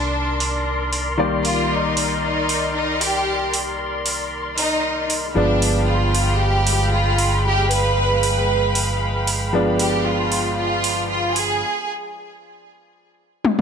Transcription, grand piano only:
0.00 1.15 D#3 medium
0.00 1.16 G3 medium
0.00 1.16 A#3 medium
0.00 1.16 D5 medium
1.18 5.33 D#3 medium
1.18 5.33 G3 medium
1.18 5.33 A#3 medium
1.18 5.34 D5 medium
5.35 9.50 F3 medium
5.35 9.50 G#3 medium
5.35 9.51 B3 medium
5.35 9.51 D4 medium
9.53 11.62 F3 medium
9.53 11.62 G#3 medium
9.53 11.63 B3 medium
9.53 11.63 D4 medium

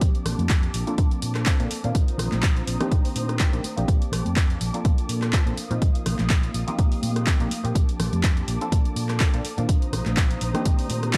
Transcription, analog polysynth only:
0.00 0.84 F3 medium
0.00 0.84 A#3 medium
0.00 0.84 C4 medium
0.00 0.84 D4 medium
0.00 0.85 G4 medium
0.87 0.95 F3 medium
0.87 0.95 A#3 medium
0.87 0.95 C4 medium
0.87 0.95 D4 medium
0.87 0.96 A4 medium
0.98 1.44 F3 medium
0.98 1.44 A#3 medium
0.98 1.44 C4 medium
0.98 1.44 D4 medium
0.98 1.44 A4 medium
1.46 1.56 F3 medium
1.46 1.56 A#3 medium
1.46 1.56 C4 medium
1.46 1.57 D4 medium
1.46 1.57 A4 medium
1.59 1.68 F3 medium
1.59 1.68 A#3 medium
1.59 1.68 C4 medium
1.59 1.68 D4 medium
1.59 1.68 A4 loud
1.83 2.77 D#3 medium
1.83 2.77 A#3 medium
1.83 2.78 C4 medium
1.83 2.78 D4 medium
1.83 2.78 F4 medium
2.80 2.89 D#3 medium
2.80 2.89 A#3 medium
2.80 2.89 C4 medium
2.80 2.89 D4 medium
2.80 2.89 G4 medium
2.91 3.37 D#3 medium
2.91 3.37 A#3 medium
2.91 3.37 C4 medium
2.91 3.38 D4 medium
2.91 3.38 G4 medium
3.40 3.50 D#3 medium
3.40 3.50 A#3 medium
3.40 3.50 C4 medium
3.40 3.50 D4 medium
3.40 3.50 G4 medium
3.52 3.61 D#3 medium
3.52 3.61 A#3 medium
3.52 3.61 C4 medium
3.52 3.61 D4 medium
3.52 3.61 G4 loud
3.76 4.71 F3 medium
3.76 4.71 A#3 medium
3.76 4.71 C4 medium
3.76 4.71 D4 medium
3.76 4.71 G4 medium
4.74 4.82 F3 medium
4.74 4.82 A#3 medium
4.74 4.82 C4 medium
4.74 4.82 D4 medium
4.74 4.82 A4 medium
4.85 5.31 F3 medium
4.85 5.31 A#3 medium
4.85 5.31 C4 medium
4.85 5.31 D4 medium
4.85 5.31 A4 medium
5.33 5.43 F3 medium
5.33 5.43 A#3 medium
5.33 5.43 C4 medium
5.33 5.43 D4 medium
5.33 5.44 A4 loud
5.46 5.55 F3 medium
5.46 5.55 A#3 medium
5.46 5.55 C4 medium
5.46 5.55 D4 medium
5.46 5.55 A4 loud
5.70 6.64 F3 medium
5.70 6.64 A#3 medium
5.70 6.65 C4 medium
5.70 6.65 D#4 medium
5.70 6.65 F4 medium
6.67 6.76 F3 medium
6.67 6.76 A#3 medium
6.67 6.76 C4 medium
6.67 6.76 D#4 medium
6.67 6.76 G4 medium
6.78 7.24 F3 medium
6.78 7.24 A#3 medium
6.78 7.24 C4 medium
6.78 7.25 D#4 medium
6.78 7.25 G4 medium
7.27 7.37 F3 medium
7.27 7.37 A#3 medium
7.27 7.37 C4 medium
7.27 7.37 D#4 medium
7.27 7.37 G4 loud
7.40 7.48 F3 medium
7.40 7.48 A#3 medium
7.40 7.49 C4 medium
7.40 7.49 D#4 medium
7.40 7.49 G4 loud
7.63 8.58 F3 medium
7.63 8.58 A#3 medium
7.63 8.58 C4 medium
7.63 8.58 D4 medium
7.63 8.58 G4 medium
8.61 8.69 F3 medium
8.61 8.69 A#3 medium
8.61 8.69 C4 medium
8.61 8.70 D4 medium
8.61 8.70 A4 medium
8.72 9.18 F3 medium
8.72 9.18 A#3 medium
8.72 9.18 C4 medium
8.72 9.18 D4 medium
8.72 9.18 A4 medium
9.20 9.30 F3 medium
9.20 9.30 A#3 medium
9.20 9.30 C4 medium
9.20 9.31 D4 medium
9.20 9.31 A4 loud
9.33 9.42 F3 medium
9.33 9.42 A#3 medium
9.33 9.42 C4 medium
9.33 9.42 D4 medium
9.33 9.42 A4 loud
9.57 10.51 D#3 medium
9.57 10.51 A#3 medium
9.57 10.52 C4 medium
9.57 10.52 D4 medium
9.57 10.52 F4 medium
10.54 10.63 D#3 medium
10.54 10.63 A#3 medium
10.54 10.63 C4 medium
10.54 10.63 D4 medium
10.54 10.63 G4 medium
10.65 11.11 D#3 medium
10.65 11.11 A#3 medium
10.65 11.12 C4 medium
10.65 11.12 D4 medium
10.65 11.12 G4 medium
11.14 11.17 D#3 medium
11.14 11.17 A#3 medium
11.14 11.17 C4 medium
11.14 11.17 D4 medium

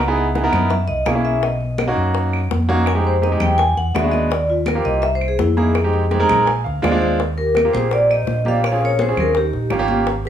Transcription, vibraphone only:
0.00 0.31 F#5 medium
0.70 0.88 E5 medium
0.88 1.06 D#5 loud
1.06 1.24 F5 medium
1.25 1.42 E5 medium
1.43 1.93 D#5 medium
2.88 3.05 G#5 medium
3.07 3.24 C5 medium
3.23 3.41 D#5 medium
3.42 3.59 G5 medium
3.58 3.76 G#5 loud
3.77 3.95 F#5 loud
3.95 4.13 E5 medium
4.12 4.30 D#5 loud
4.31 4.49 D5 medium
4.50 4.67 F4 medium
4.67 4.85 A#4 medium
4.85 5.03 D#5 loud
5.02 5.14 E5 loud
5.15 5.27 C5 medium
5.28 5.39 G#4 medium
5.40 5.57 E4 medium
5.58 6.44 G#4 medium
7.38 7.71 A#4 medium
7.73 7.92 C5 medium
7.93 8.01 D5 loud
8.11 8.47 D#5 loud
8.48 8.65 F5 medium
8.66 8.82 F5 loud
8.85 9.02 C#5 loud
9.02 9.19 C5 medium
9.20 9.28 A#4 medium
9.37 9.86 G4 medium

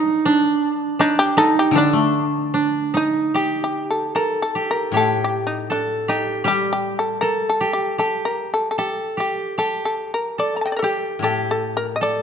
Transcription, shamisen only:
1.01 1.17 D#4 medium
1.19 1.36 G4 medium
1.38 1.55 A4 loud
1.59 1.75 G4 medium
1.78 2.54 D4 medium
2.54 2.91 A#3 medium
2.97 3.33 D#4 medium
3.36 3.60 G4 medium
3.64 3.88 G4 medium
3.91 4.14 A4 medium
4.16 4.40 A#4 medium
4.42 4.67 A4 medium
4.71 4.94 A#4 medium
4.97 5.20 A4 medium
5.24 5.46 G4 medium
5.47 5.70 D#4 medium
5.72 6.07 D4 medium
6.09 6.44 D#4 medium
6.48 6.71 G4 medium
6.73 6.96 G4 medium
6.99 7.21 A4 medium
7.21 7.46 A#4 medium
7.50 7.73 A4 medium
7.73 7.97 G4 medium
7.99 8.23 A4 medium
8.25 8.49 A#4 medium
8.54 8.70 A4 medium
8.71 8.78 A4 soft
8.79 9.16 G4 medium
9.20 9.57 G4 medium
9.59 9.84 A4 medium
9.85 10.11 A4 medium
10.14 10.39 A#4 medium
10.39 10.56 D5 medium
10.56 10.61 A#5 soft
10.61 10.65 A5 soft
10.66 10.72 D#5 soft
10.66 10.79 G5 soft
10.72 10.76 D5 soft
10.76 10.93 A4 soft
10.76 10.83 A#4 soft
10.84 11.20 G4 medium
11.24 11.48 A4 medium
11.51 11.74 A4 medium
11.77 11.94 A#4 medium
11.96 12.02 D#5 medium
12.03 12.22 D5 medium

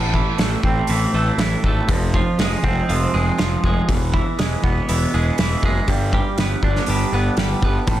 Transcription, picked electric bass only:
0.00 0.21 A1 medium
0.38 0.55 A1 medium
0.64 0.80 A1 medium
0.89 1.05 A1 medium
1.14 1.30 A1 medium
1.38 1.54 A1 medium
1.64 1.80 G#1 medium
1.88 2.20 F1 medium
2.38 2.55 F1 medium
2.63 2.79 F1 medium
2.90 3.05 F1 medium
3.14 3.30 F1 medium
3.40 3.56 F1 medium
3.64 3.80 F1 medium
3.88 4.20 E1 medium
4.39 4.55 E1 medium
4.63 4.79 E1 medium
4.89 5.05 E1 medium
5.14 5.30 E1 medium
5.39 5.54 E1 medium
5.63 5.79 F#1 medium
5.88 6.20 G1 medium
6.38 6.54 G1 medium
6.62 6.79 G1 medium
6.88 7.04 G1 medium
7.12 7.28 G1 medium
7.37 7.53 G1 medium
7.62 7.78 G1 medium
7.87 8.00 A1 medium

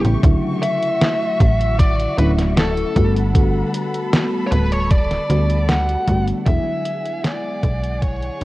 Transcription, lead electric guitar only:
0.63 1.83 E5 loud
1.79 2.18 D5 loud
2.18 2.29 B4 medium
2.57 3.12 A4 medium
4.47 4.52 C#5 medium
4.52 4.72 B4 loud
4.72 4.91 C#5 medium
4.91 5.69 D5 loud
5.69 6.24 F#5 loud
6.47 7.21 E5 loud
7.25 8.02 D5 loud
8.02 8.44 C#5 loud

